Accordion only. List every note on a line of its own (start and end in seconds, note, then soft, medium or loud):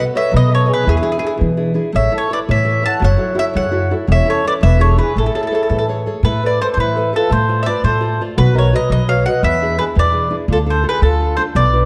0.16 0.32 C#5 medium
0.34 0.50 B4 medium
0.53 0.69 A4 medium
0.68 0.85 G#4 medium
0.86 1.37 E4 medium
1.96 2.13 C#5 medium
2.14 2.30 A4 medium
2.33 2.41 B4 medium
2.50 2.83 C#5 medium
2.87 3.03 F#5 medium
3.04 3.37 C#5 medium
3.40 3.48 C#5 medium
3.57 3.94 C#5 medium
4.14 4.29 C#5 medium
4.30 4.45 A4 medium
4.48 4.55 B4 medium
4.65 4.81 B4 medium
4.83 4.98 A4 medium
5.02 5.17 G#4 medium
5.21 5.86 E4 medium
6.25 6.42 E4 medium
6.46 6.60 B4 medium
6.61 6.66 A4 medium
6.71 6.77 A4 soft
6.79 7.12 E4 medium
7.16 7.31 F4 medium
7.32 7.61 A4 medium
7.63 7.67 C5 soft
7.69 7.84 B4 medium
7.86 8.22 A4 medium
8.37 8.54 F#4 medium
8.54 8.71 A#4 medium
8.74 8.89 B4 medium
8.92 9.07 B4 medium
9.09 9.24 C#5 medium
9.28 9.43 D#5 medium
9.44 9.77 B4 medium
9.79 9.87 G#4 medium
9.96 10.33 B4 medium
10.51 10.59 F4 medium
10.69 10.85 A4 medium
10.90 11.04 G#4 medium
11.04 11.36 F4 medium
11.38 11.46 A4 medium
11.57 11.85 B4 medium